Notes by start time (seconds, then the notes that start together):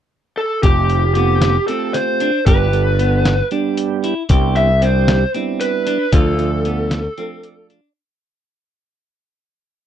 0.37 A4
0.63 F1 A3 C4 F4 G4, kick, closed hi-hat
0.90 closed hi-hat
1.14 A3 B3 C4 F4 G4, closed hi-hat
1.42 snare, closed hi-hat
1.67 A3 C4 F4 G4 A4, closed hi-hat
1.93 C5, snare, closed hi-hat
2.20 D4, closed hi-hat
2.46 G1 G3 B3 D4 G4 B4, kick, closed hi-hat
2.73 G3 B3 D4 A4, closed hi-hat
2.99 B3, closed hi-hat
3.25 snare, closed hi-hat
3.51 G3 B3 D4 G4, closed hi-hat
3.77 closed hi-hat
4.04 E4, closed hi-hat
4.29 C2 G3 B3 D4 E4 G4, kick, closed hi-hat
4.56 E5, closed hi-hat
4.82 G3 C4 D4 G4 C5, closed hi-hat
5.08 snare, closed hi-hat
5.34 G3 B3 C4 D4 E4, closed hi-hat
5.61 B4, closed hi-hat
5.87 D4, closed hi-hat
6.12 D2 F3 A3 D4 F4 A4, kick, closed hi-hat
6.39 F3 A3 D4 F4, closed hi-hat
6.65 B3, closed hi-hat
6.91 snare, closed hi-hat
7.18 F3 A3 C4 D4 F4, closed hi-hat
7.43 D5, closed hi-hat
7.70 D4, closed hi-hat